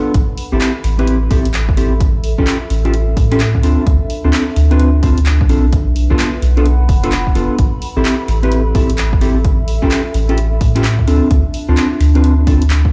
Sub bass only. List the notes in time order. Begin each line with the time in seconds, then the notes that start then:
0.14 A1
0.52 A1
0.84 A1
1.31 A1
1.45 A1
1.77 A1
2.38 A1
2.70 A1
3.17 A2
3.63 D2
3.87 D2
4.25 D2
4.56 D2
5.18 D2
5.49 B1
6.42 B1
6.89 F1
7.35 F1
7.59 A1
7.97 A1
8.28 A1
8.75 A1
8.90 A1
9.21 A1
9.83 A1
10.14 A1
10.61 A2
11.07 D2
11.31 D2
11.69 D2
12.00 D2
12.62 D2